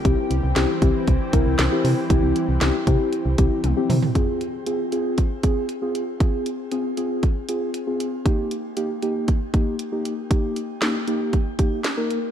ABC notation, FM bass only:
X:1
M:4/4
L:1/16
Q:1/4=117
K:Fm
V:1 name="FM bass" clef=bass
C,, z C,, C,, C,, z C,, z C,, z C,, C,, C,, z C, z | C,, C,, z C,, C,, z C, z2 C,, C,, z C,, z C, z | z16 | z16 |
z16 | z16 |]